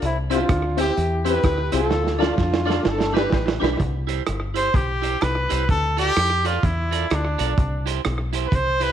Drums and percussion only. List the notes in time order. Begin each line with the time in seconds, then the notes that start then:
0.02 closed hi-hat
0.31 closed hi-hat
0.49 kick, cross-stick, closed hi-hat
0.78 closed hi-hat
0.97 closed hi-hat
1.26 closed hi-hat
1.43 kick, cross-stick, closed hi-hat
1.72 closed hi-hat
1.91 snare
2.07 snare
2.22 snare
2.38 kick, snare
2.54 snare
2.70 snare
2.85 snare
3.00 snare
3.17 snare
3.32 kick, snare
3.48 snare
3.64 snare
3.80 kick, closed hi-hat
4.09 closed hi-hat
4.26 cross-stick, closed hi-hat
4.56 closed hi-hat
4.74 kick, closed hi-hat
5.03 closed hi-hat
5.21 cross-stick, closed hi-hat
5.50 closed hi-hat
5.69 kick, closed hi-hat
5.98 closed hi-hat
6.17 cross-stick, closed hi-hat
6.45 closed hi-hat
6.63 kick, closed hi-hat
6.92 closed hi-hat
7.10 cross-stick, closed hi-hat
7.39 closed hi-hat
7.58 kick, closed hi-hat
7.87 closed hi-hat
8.05 cross-stick, closed hi-hat
8.33 closed hi-hat
8.52 kick, closed hi-hat
8.81 closed hi-hat